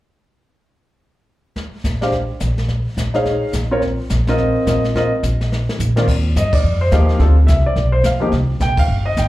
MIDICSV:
0, 0, Header, 1, 4, 480
1, 0, Start_track
1, 0, Key_signature, -3, "major"
1, 0, Tempo, 281690
1, 2660, Time_signature, 4, 2, 24, 8
1, 15815, End_track
2, 0, Start_track
2, 0, Title_t, "Grand piano"
2, 0, Program_c, 0, 0
2, 3430, Note_on_c, 0, 62, 55
2, 3442, Note_on_c, 0, 67, 51
2, 3458, Note_on_c, 0, 77, 60
2, 3462, Note_on_c, 0, 72, 50
2, 3601, Note_off_c, 0, 62, 0
2, 3607, Note_off_c, 0, 67, 0
2, 3615, Note_off_c, 0, 77, 0
2, 3616, Note_off_c, 0, 72, 0
2, 5349, Note_on_c, 0, 63, 60
2, 5361, Note_on_c, 0, 68, 53
2, 5375, Note_on_c, 0, 73, 49
2, 5376, Note_on_c, 0, 77, 65
2, 5982, Note_off_c, 0, 63, 0
2, 5989, Note_off_c, 0, 68, 0
2, 5996, Note_off_c, 0, 73, 0
2, 5996, Note_off_c, 0, 77, 0
2, 6327, Note_on_c, 0, 60, 60
2, 6330, Note_on_c, 0, 65, 52
2, 6335, Note_on_c, 0, 70, 55
2, 6345, Note_on_c, 0, 73, 69
2, 6490, Note_off_c, 0, 60, 0
2, 6491, Note_off_c, 0, 65, 0
2, 6494, Note_off_c, 0, 70, 0
2, 6499, Note_off_c, 0, 73, 0
2, 7301, Note_on_c, 0, 60, 65
2, 7305, Note_on_c, 0, 65, 56
2, 7315, Note_on_c, 0, 70, 59
2, 7319, Note_on_c, 0, 75, 69
2, 7918, Note_off_c, 0, 60, 0
2, 7920, Note_off_c, 0, 65, 0
2, 7925, Note_off_c, 0, 70, 0
2, 7927, Note_off_c, 0, 75, 0
2, 7957, Note_on_c, 0, 60, 48
2, 7959, Note_on_c, 0, 65, 42
2, 7964, Note_on_c, 0, 70, 44
2, 7981, Note_on_c, 0, 75, 54
2, 8213, Note_off_c, 0, 60, 0
2, 8215, Note_off_c, 0, 65, 0
2, 8217, Note_off_c, 0, 70, 0
2, 8225, Note_off_c, 0, 75, 0
2, 8445, Note_on_c, 0, 65, 51
2, 8446, Note_on_c, 0, 70, 52
2, 8448, Note_on_c, 0, 60, 54
2, 8462, Note_on_c, 0, 75, 62
2, 8697, Note_off_c, 0, 65, 0
2, 8698, Note_off_c, 0, 70, 0
2, 8699, Note_off_c, 0, 60, 0
2, 8706, Note_off_c, 0, 75, 0
2, 10158, Note_on_c, 0, 51, 57
2, 10174, Note_on_c, 0, 60, 50
2, 10176, Note_on_c, 0, 65, 51
2, 10176, Note_on_c, 0, 70, 48
2, 10191, Note_on_c, 0, 74, 64
2, 10325, Note_off_c, 0, 51, 0
2, 10333, Note_off_c, 0, 60, 0
2, 10334, Note_off_c, 0, 65, 0
2, 10334, Note_off_c, 0, 70, 0
2, 10342, Note_off_c, 0, 74, 0
2, 10854, Note_on_c, 0, 75, 62
2, 11122, Note_off_c, 0, 75, 0
2, 11131, Note_on_c, 0, 74, 77
2, 11569, Note_off_c, 0, 74, 0
2, 11607, Note_on_c, 0, 72, 69
2, 11782, Note_off_c, 0, 72, 0
2, 11786, Note_on_c, 0, 53, 60
2, 11801, Note_on_c, 0, 58, 55
2, 11801, Note_on_c, 0, 63, 57
2, 11803, Note_on_c, 0, 77, 72
2, 11815, Note_on_c, 0, 67, 66
2, 12238, Note_on_c, 0, 55, 53
2, 12239, Note_off_c, 0, 77, 0
2, 12254, Note_on_c, 0, 60, 47
2, 12263, Note_off_c, 0, 53, 0
2, 12269, Note_on_c, 0, 65, 50
2, 12269, Note_on_c, 0, 69, 57
2, 12270, Note_off_c, 0, 63, 0
2, 12271, Note_off_c, 0, 58, 0
2, 12277, Note_off_c, 0, 67, 0
2, 12512, Note_off_c, 0, 55, 0
2, 12520, Note_off_c, 0, 60, 0
2, 12528, Note_off_c, 0, 65, 0
2, 12528, Note_off_c, 0, 69, 0
2, 12726, Note_on_c, 0, 76, 66
2, 13016, Note_off_c, 0, 76, 0
2, 13059, Note_on_c, 0, 74, 76
2, 13493, Note_off_c, 0, 74, 0
2, 13501, Note_on_c, 0, 72, 75
2, 13688, Note_off_c, 0, 72, 0
2, 13728, Note_on_c, 0, 77, 64
2, 13973, Note_on_c, 0, 53, 60
2, 13986, Note_on_c, 0, 58, 53
2, 13995, Note_on_c, 0, 63, 56
2, 14001, Note_on_c, 0, 67, 65
2, 14151, Note_off_c, 0, 53, 0
2, 14157, Note_off_c, 0, 58, 0
2, 14160, Note_off_c, 0, 77, 0
2, 14162, Note_off_c, 0, 63, 0
2, 14165, Note_off_c, 0, 67, 0
2, 14680, Note_on_c, 0, 79, 86
2, 14953, Note_off_c, 0, 79, 0
2, 14983, Note_on_c, 0, 77, 77
2, 15414, Note_off_c, 0, 77, 0
2, 15431, Note_on_c, 0, 75, 72
2, 15613, Note_off_c, 0, 75, 0
2, 15643, Note_on_c, 0, 79, 69
2, 15815, Note_off_c, 0, 79, 0
2, 15815, End_track
3, 0, Start_track
3, 0, Title_t, "Upright bass"
3, 0, Program_c, 1, 32
3, 3137, Note_on_c, 1, 34, 64
3, 3893, Note_off_c, 1, 34, 0
3, 4103, Note_on_c, 1, 34, 67
3, 4856, Note_off_c, 1, 34, 0
3, 5060, Note_on_c, 1, 34, 60
3, 5815, Note_off_c, 1, 34, 0
3, 6020, Note_on_c, 1, 34, 66
3, 6775, Note_off_c, 1, 34, 0
3, 6992, Note_on_c, 1, 34, 61
3, 7741, Note_off_c, 1, 34, 0
3, 7947, Note_on_c, 1, 34, 72
3, 8699, Note_off_c, 1, 34, 0
3, 8911, Note_on_c, 1, 34, 63
3, 9660, Note_off_c, 1, 34, 0
3, 9862, Note_on_c, 1, 34, 69
3, 10309, Note_off_c, 1, 34, 0
3, 10353, Note_on_c, 1, 39, 76
3, 10813, Note_off_c, 1, 39, 0
3, 10841, Note_on_c, 1, 43, 73
3, 11297, Note_off_c, 1, 43, 0
3, 11308, Note_on_c, 1, 41, 77
3, 11770, Note_off_c, 1, 41, 0
3, 11789, Note_on_c, 1, 39, 82
3, 12250, Note_off_c, 1, 39, 0
3, 12260, Note_on_c, 1, 38, 79
3, 12725, Note_off_c, 1, 38, 0
3, 12741, Note_on_c, 1, 36, 78
3, 13206, Note_off_c, 1, 36, 0
3, 13220, Note_on_c, 1, 35, 75
3, 13685, Note_off_c, 1, 35, 0
3, 13696, Note_on_c, 1, 38, 79
3, 14163, Note_off_c, 1, 38, 0
3, 14173, Note_on_c, 1, 36, 77
3, 14641, Note_off_c, 1, 36, 0
3, 14656, Note_on_c, 1, 34, 75
3, 15123, Note_off_c, 1, 34, 0
3, 15135, Note_on_c, 1, 31, 72
3, 15602, Note_off_c, 1, 31, 0
3, 15621, Note_on_c, 1, 32, 82
3, 15815, Note_off_c, 1, 32, 0
3, 15815, End_track
4, 0, Start_track
4, 0, Title_t, "Drums"
4, 2657, Note_on_c, 9, 36, 16
4, 2659, Note_on_c, 9, 25, 43
4, 2659, Note_on_c, 9, 38, 31
4, 2827, Note_off_c, 9, 36, 0
4, 2829, Note_off_c, 9, 38, 0
4, 3139, Note_on_c, 9, 36, 20
4, 3140, Note_on_c, 9, 44, 40
4, 3146, Note_on_c, 9, 38, 43
4, 3309, Note_off_c, 9, 36, 0
4, 3310, Note_off_c, 9, 44, 0
4, 3317, Note_off_c, 9, 38, 0
4, 3438, Note_on_c, 9, 38, 31
4, 3609, Note_off_c, 9, 25, 0
4, 3609, Note_off_c, 9, 38, 0
4, 3609, Note_on_c, 9, 25, 37
4, 3609, Note_on_c, 9, 38, 33
4, 3614, Note_on_c, 9, 36, 21
4, 3779, Note_off_c, 9, 38, 0
4, 3785, Note_off_c, 9, 36, 0
4, 4091, Note_on_c, 9, 44, 49
4, 4097, Note_on_c, 9, 36, 15
4, 4098, Note_on_c, 9, 38, 42
4, 4261, Note_off_c, 9, 44, 0
4, 4268, Note_off_c, 9, 36, 0
4, 4268, Note_off_c, 9, 38, 0
4, 4392, Note_on_c, 9, 38, 30
4, 4563, Note_off_c, 9, 38, 0
4, 4574, Note_off_c, 9, 25, 0
4, 4574, Note_on_c, 9, 25, 38
4, 4574, Note_on_c, 9, 38, 35
4, 4578, Note_on_c, 9, 36, 19
4, 4744, Note_off_c, 9, 38, 0
4, 4748, Note_off_c, 9, 36, 0
4, 5063, Note_on_c, 9, 36, 18
4, 5066, Note_on_c, 9, 44, 41
4, 5073, Note_on_c, 9, 38, 43
4, 5233, Note_off_c, 9, 36, 0
4, 5236, Note_off_c, 9, 44, 0
4, 5243, Note_off_c, 9, 38, 0
4, 5356, Note_on_c, 9, 38, 32
4, 5526, Note_off_c, 9, 38, 0
4, 5544, Note_on_c, 9, 36, 15
4, 5547, Note_off_c, 9, 25, 0
4, 5547, Note_on_c, 9, 25, 42
4, 5547, Note_on_c, 9, 38, 32
4, 5714, Note_off_c, 9, 36, 0
4, 5717, Note_off_c, 9, 38, 0
4, 6014, Note_on_c, 9, 44, 52
4, 6020, Note_on_c, 9, 38, 49
4, 6023, Note_on_c, 9, 36, 16
4, 6184, Note_off_c, 9, 44, 0
4, 6191, Note_off_c, 9, 38, 0
4, 6193, Note_off_c, 9, 36, 0
4, 6503, Note_on_c, 9, 36, 20
4, 6506, Note_off_c, 9, 25, 0
4, 6506, Note_on_c, 9, 25, 42
4, 6506, Note_on_c, 9, 38, 34
4, 6674, Note_off_c, 9, 36, 0
4, 6676, Note_off_c, 9, 38, 0
4, 6980, Note_on_c, 9, 44, 48
4, 6986, Note_on_c, 9, 36, 17
4, 6987, Note_on_c, 9, 38, 46
4, 7151, Note_off_c, 9, 44, 0
4, 7156, Note_off_c, 9, 36, 0
4, 7158, Note_off_c, 9, 38, 0
4, 7280, Note_on_c, 9, 38, 33
4, 7450, Note_off_c, 9, 38, 0
4, 7463, Note_off_c, 9, 25, 0
4, 7463, Note_on_c, 9, 25, 44
4, 7463, Note_on_c, 9, 36, 19
4, 7463, Note_on_c, 9, 38, 34
4, 7633, Note_off_c, 9, 36, 0
4, 7633, Note_off_c, 9, 38, 0
4, 7950, Note_on_c, 9, 36, 17
4, 7956, Note_on_c, 9, 44, 52
4, 7963, Note_on_c, 9, 38, 45
4, 8120, Note_off_c, 9, 36, 0
4, 8126, Note_off_c, 9, 44, 0
4, 8133, Note_off_c, 9, 38, 0
4, 8250, Note_on_c, 9, 38, 29
4, 8420, Note_off_c, 9, 38, 0
4, 8431, Note_on_c, 9, 36, 18
4, 8442, Note_off_c, 9, 25, 0
4, 8442, Note_on_c, 9, 25, 38
4, 8442, Note_on_c, 9, 38, 36
4, 8602, Note_off_c, 9, 36, 0
4, 8613, Note_off_c, 9, 38, 0
4, 8913, Note_on_c, 9, 44, 51
4, 8917, Note_on_c, 9, 36, 19
4, 8920, Note_on_c, 9, 38, 45
4, 9083, Note_off_c, 9, 44, 0
4, 9087, Note_off_c, 9, 36, 0
4, 9090, Note_off_c, 9, 38, 0
4, 9216, Note_on_c, 9, 38, 34
4, 9386, Note_off_c, 9, 38, 0
4, 9409, Note_on_c, 9, 38, 34
4, 9580, Note_off_c, 9, 38, 0
4, 9700, Note_on_c, 9, 38, 42
4, 9870, Note_off_c, 9, 38, 0
4, 9879, Note_on_c, 9, 44, 48
4, 9886, Note_on_c, 9, 43, 58
4, 10050, Note_off_c, 9, 44, 0
4, 10056, Note_off_c, 9, 43, 0
4, 10171, Note_on_c, 9, 38, 55
4, 10341, Note_off_c, 9, 38, 0
4, 10357, Note_on_c, 9, 36, 65
4, 10363, Note_off_c, 9, 25, 0
4, 10363, Note_on_c, 9, 25, 41
4, 10363, Note_on_c, 9, 38, 38
4, 10363, Note_on_c, 9, 49, 60
4, 10528, Note_off_c, 9, 36, 0
4, 10533, Note_off_c, 9, 38, 0
4, 10533, Note_off_c, 9, 49, 0
4, 10839, Note_on_c, 9, 36, 22
4, 10840, Note_on_c, 9, 44, 58
4, 10847, Note_on_c, 9, 38, 52
4, 11010, Note_off_c, 9, 36, 0
4, 11010, Note_off_c, 9, 44, 0
4, 11017, Note_off_c, 9, 38, 0
4, 11121, Note_on_c, 9, 51, 67
4, 11126, Note_on_c, 9, 36, 78
4, 11291, Note_off_c, 9, 51, 0
4, 11296, Note_off_c, 9, 36, 0
4, 11316, Note_off_c, 9, 25, 0
4, 11316, Note_on_c, 9, 25, 46
4, 11786, Note_on_c, 9, 44, 56
4, 11790, Note_on_c, 9, 36, 23
4, 11792, Note_on_c, 9, 38, 55
4, 11956, Note_off_c, 9, 44, 0
4, 11960, Note_off_c, 9, 36, 0
4, 11963, Note_off_c, 9, 38, 0
4, 12081, Note_on_c, 9, 38, 33
4, 12251, Note_off_c, 9, 38, 0
4, 12261, Note_off_c, 9, 25, 0
4, 12261, Note_on_c, 9, 25, 41
4, 12261, Note_on_c, 9, 38, 39
4, 12263, Note_on_c, 9, 36, 21
4, 12432, Note_off_c, 9, 38, 0
4, 12434, Note_off_c, 9, 36, 0
4, 12744, Note_on_c, 9, 36, 17
4, 12744, Note_on_c, 9, 44, 49
4, 12750, Note_on_c, 9, 38, 50
4, 12914, Note_off_c, 9, 36, 0
4, 12914, Note_off_c, 9, 44, 0
4, 12921, Note_off_c, 9, 38, 0
4, 13218, Note_on_c, 9, 36, 23
4, 13224, Note_off_c, 9, 25, 0
4, 13224, Note_on_c, 9, 25, 48
4, 13224, Note_on_c, 9, 38, 39
4, 13389, Note_off_c, 9, 36, 0
4, 13395, Note_off_c, 9, 38, 0
4, 13697, Note_on_c, 9, 44, 58
4, 13698, Note_on_c, 9, 36, 20
4, 13704, Note_on_c, 9, 38, 52
4, 13868, Note_off_c, 9, 36, 0
4, 13868, Note_off_c, 9, 44, 0
4, 13875, Note_off_c, 9, 38, 0
4, 14177, Note_on_c, 9, 36, 24
4, 14183, Note_off_c, 9, 25, 0
4, 14183, Note_on_c, 9, 25, 39
4, 14183, Note_on_c, 9, 38, 40
4, 14347, Note_off_c, 9, 36, 0
4, 14353, Note_off_c, 9, 38, 0
4, 14658, Note_on_c, 9, 44, 45
4, 14659, Note_on_c, 9, 36, 22
4, 14665, Note_on_c, 9, 38, 49
4, 14828, Note_off_c, 9, 44, 0
4, 14830, Note_off_c, 9, 36, 0
4, 14835, Note_off_c, 9, 38, 0
4, 14951, Note_on_c, 9, 36, 72
4, 14952, Note_on_c, 9, 51, 68
4, 15122, Note_off_c, 9, 36, 0
4, 15122, Note_off_c, 9, 51, 0
4, 15144, Note_off_c, 9, 25, 0
4, 15144, Note_on_c, 9, 25, 50
4, 15623, Note_on_c, 9, 36, 16
4, 15623, Note_on_c, 9, 44, 55
4, 15630, Note_on_c, 9, 38, 54
4, 15793, Note_off_c, 9, 44, 0
4, 15794, Note_off_c, 9, 36, 0
4, 15800, Note_off_c, 9, 38, 0
4, 15815, Note_off_c, 9, 25, 0
4, 15815, End_track
0, 0, End_of_file